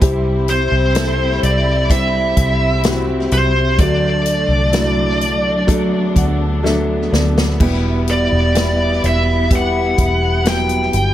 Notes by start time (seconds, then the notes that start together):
Already playing: G3
0.01 C2 C3 G3 C4 E4 G4, kick, closed hi-hat
0.48 C5, closed hi-hat
0.71 C2
0.95 G3 C4 E4 A4, snare, closed hi-hat
1.43 C2 D5, closed hi-hat
1.90 G3 C4 E4 G4 E5, kick, closed hi-hat
2.37 C2, kick, closed hi-hat
2.83 G3 C4 E4 F#4, snare, closed hi-hat
3.31 C2 C5, closed hi-hat
3.79 D2 D3 F#3 A3 D4 F#4 D5, kick, closed hi-hat
4.26 closed hi-hat
4.48 C2
4.73 F#3 A3 D4 E4, snare, closed hi-hat
5.21 closed hi-hat
5.67 F#3 A3 B3 D4 A4, kick, closed hi-hat
6.16 D2 F#5, kick, closed hi-hat
6.63 F#3 A3 D4 A4 E5, snare
7.12 D2 D5, snare
7.38 snare
7.60 E1 B2 G3 B3 E4 G4, kick, crash
8.08 D5, closed hi-hat
8.32 E1
8.55 G3 B3 E4 G4, snare, closed hi-hat
9.03 E1 E5, closed hi-hat
9.51 G3 B3 E4 G4, kick, closed hi-hat
9.56 F#5
9.98 E1, kick, closed hi-hat
10.45 F#3 G3 B3 E4 G5, snare, closed hi-hat
10.69 closed hi-hat
10.93 G1, closed hi-hat